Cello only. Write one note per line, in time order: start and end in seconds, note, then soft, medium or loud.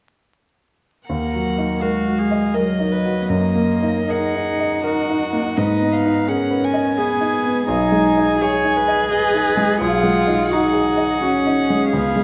1.08 1.83 A#3 soft
1.82 2.57 G#3 soft
2.55 3.24 F#3 soft
3.22 3.30 B3 soft
3.28 4.09 A#3 medium
4.09 5.54 D#4 medium
5.56 6.28 D#4 medium
6.27 7.00 C#4 medium
6.98 7.67 B3 medium
7.67 8.39 D#4 medium
8.41 9.78 G#4 medium
9.81 10.54 F4 medium
10.52 11.22 D#4 medium
11.22 11.95 C#4 medium
11.94 12.24 B3 medium